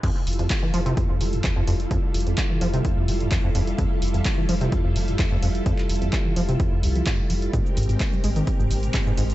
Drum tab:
CC |x-------------------------------|--------------------------------|--------------------------------|--------------------------------|
HH |x---oxx-x---o-x-x---o-x-x---o-x-|x---oxx-x---o-x-x---o-x-x---o-x-|x---oxx-x---o-x-x---o-x-x---o-x-|x---oxx-x---o-x-x---o-x-x---o-x-|
SH |--------------------------------|--------------------------------|--------------------------------|--------------------------------|
CP |--------x---------------x-------|--------x---------------x-------|--------x---------------x-------|--x-----x---------------x-------|
BD |o-------o-------o-------o-------|o-------o-------o-------o-------|o-------o-------o-------o-------|o-------o-------o-------o-------|

CC |--------------------------------|
HH |x---oxx-x---o-x-x---o-x-x---o-x-|
SH |x-x-x-x-x-x-x-x-x-x-x-x-x-x-x-x-|
CP |--------x---------------x-------|
BD |o-------o-------o-------o-------|